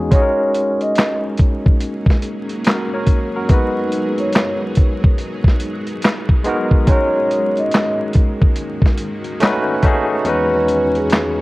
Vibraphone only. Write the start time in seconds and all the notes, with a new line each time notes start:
0.13 C#5
0.82 D#5
3.51 B4
4.19 C#5
6.88 C#5
7.58 D#5
10.27 B4
10.96 G#4